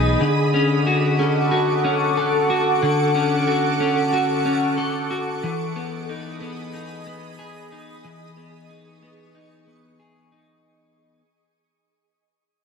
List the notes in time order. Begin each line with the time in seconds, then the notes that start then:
Already playing: B1 E3 B3 D#4 G#4 D#5 B5 D#6
0.21 D3 A4 F#5 C#6 D6
0.54 C#4
0.87 F#4
1.19 C#4
1.51 F#4
1.84 C#4
2.17 A4
2.50 F#4
2.83 D3
3.15 C#4
3.48 F#4
3.80 C#4
4.13 F#4
4.45 C#4
4.78 A4
5.11 F#4
5.43 E3 G#4 D#5 B5 D#6
5.76 B3
6.09 D#4
6.41 B3
6.74 D#4
7.07 B3
7.39 G#4
7.72 D#4
8.04 E3 C#6
8.37 B3
8.70 D#4
9.02 B3
9.35 D#4
9.67 B3
10.00 G#4
10.32 D#4